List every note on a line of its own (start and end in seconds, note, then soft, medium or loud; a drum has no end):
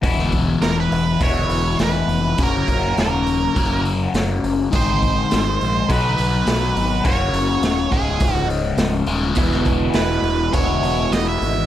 0.02 0.54 E1 medium
0.02 1.18 E2 medium
0.02 1.19 B2 medium
0.02 1.19 E3 medium
0.02 1.19 G#3 medium
0.02 1.20 B3 medium
0.02 1.20 E4 medium
0.02 kick loud
0.02 open hi-hat medium
0.19 snare soft
0.32 kick medium
0.32 open hi-hat soft
0.61 0.87 E1 medium
0.61 0.76 A#4 medium
0.61 snare loud
0.61 open hi-hat medium
0.80 1.23 B4 medium
0.92 1.17 E1 medium
0.92 open hi-hat soft
1.20 1.46 E1 medium
1.20 2.35 E2 medium
1.20 2.36 B2 medium
1.20 2.36 E3 medium
1.20 2.36 G#3 medium
1.20 2.37 B3 medium
1.20 2.37 E4 medium
1.20 1.77 C#5 medium
1.20 kick loud
1.20 open hi-hat medium
1.49 1.75 E1 medium
1.49 open hi-hat soft
1.79 2.05 E1 medium
1.79 snare loud
1.79 open hi-hat medium
1.83 2.41 B4 medium
2.07 2.33 F1 medium
2.07 open hi-hat soft
2.38 2.63 F#1 medium
2.38 3.53 F#2 medium
2.38 3.53 C#3 medium
2.38 3.53 F#3 medium
2.38 3.54 A#3 medium
2.38 3.54 C#4 loud
2.38 3.54 F#4 medium
2.38 kick loud
2.38 open hi-hat medium
2.43 3.00 A#4 medium
2.67 2.93 F#1 medium
2.67 kick medium
2.67 open hi-hat soft
2.97 3.47 D#1 medium
2.97 3.82 A#4 medium
2.97 snare loud
2.97 open hi-hat medium
3.27 open hi-hat soft
3.55 4.06 F#1 medium
3.55 4.70 F#2 medium
3.55 4.70 C#3 medium
3.55 4.70 F#3 medium
3.55 4.71 A#3 medium
3.55 4.71 C#4 medium
3.55 4.71 F#4 medium
3.55 kick loud
3.55 open hi-hat medium
3.85 open hi-hat soft
4.14 4.39 F#1 medium
4.14 snare loud
4.14 open hi-hat medium
4.43 4.68 F#1 medium
4.43 open hi-hat soft
4.71 5.23 G#1 medium
4.71 5.86 G#2 medium
4.71 5.87 D#3 medium
4.71 5.87 G#3 medium
4.71 5.87 C4 medium
4.71 5.87 D#4 medium
4.71 5.88 G#4 loud
4.71 kick loud
4.71 open hi-hat medium
4.76 5.92 C5 medium
5.02 kick medium
5.02 open hi-hat soft
5.31 5.57 G#1 medium
5.31 snare loud
5.31 open hi-hat medium
5.61 5.86 A#1 medium
5.61 open hi-hat soft
5.89 6.14 B1 medium
5.89 7.03 B2 medium
5.89 7.04 F#3 medium
5.89 7.04 B3 medium
5.89 7.04 D#4 medium
5.89 7.05 F#4 loud
5.89 7.05 B4 loud
5.89 7.05 B4 medium
5.89 kick loud
5.89 open hi-hat medium
6.18 6.43 B1 medium
6.18 open hi-hat medium
6.47 6.72 B1 medium
6.47 snare loud
6.47 open hi-hat medium
6.75 7.01 G#1 medium
6.75 open hi-hat soft
7.04 7.30 F#1 medium
7.04 7.90 F#2 medium
7.04 7.90 C#3 medium
7.04 7.91 F#3 medium
7.04 7.91 A#3 medium
7.04 7.91 C#4 medium
7.04 7.92 F#4 medium
7.04 7.95 C#5 loud
7.04 kick loud
7.04 open hi-hat medium
7.33 7.59 F#1 medium
7.33 open hi-hat soft
7.62 7.88 D#1 medium
7.62 snare loud
7.62 open hi-hat medium
7.91 8.17 C#1 medium
7.91 9.07 C#2 medium
7.91 9.07 G#2 medium
7.91 9.07 C#3 medium
7.91 9.07 G#3 medium
7.91 9.06 F4 medium
7.91 8.34 G#4 medium
7.91 kick medium
7.91 open hi-hat soft
8.20 8.72 C#1 medium
8.20 kick loud
8.20 open hi-hat medium
8.34 8.47 F#4 medium
8.50 open hi-hat soft
8.77 9.04 C#1 medium
8.77 snare loud
8.77 open hi-hat medium
9.06 9.33 D#1 medium
9.06 9.36 G#2 medium
9.06 9.36 C#3 medium
9.06 9.36 G#3 medium
9.06 9.35 F4 medium
9.06 open hi-hat soft
9.10 9.35 C#2 medium
9.35 9.88 E1 medium
9.35 10.51 E2 medium
9.35 10.52 B2 medium
9.35 10.52 E3 medium
9.35 10.52 G#3 medium
9.35 10.53 B3 medium
9.35 10.53 E4 medium
9.35 kick loud
9.35 open hi-hat medium
9.52 snare soft
9.65 kick medium
9.65 open hi-hat soft
9.94 10.20 E1 medium
9.94 10.54 B4 medium
9.94 snare loud
9.94 open hi-hat medium
10.22 10.49 E1 medium
10.22 open hi-hat soft
10.52 10.79 E1 medium
10.52 11.66 E2 medium
10.52 11.66 B2 medium
10.52 11.66 E3 medium
10.52 11.66 G#3 medium
10.52 11.66 B3 medium
10.52 11.66 E4 medium
10.52 11.14 C#5 medium
10.52 kick loud
10.52 open hi-hat medium
10.82 11.08 E1 medium
10.82 open hi-hat soft
11.11 11.37 E1 medium
11.11 11.28 D#5 medium
11.11 snare loud
11.11 open hi-hat medium
11.28 11.66 E5 medium
11.41 11.66 G#1 medium
11.41 open hi-hat soft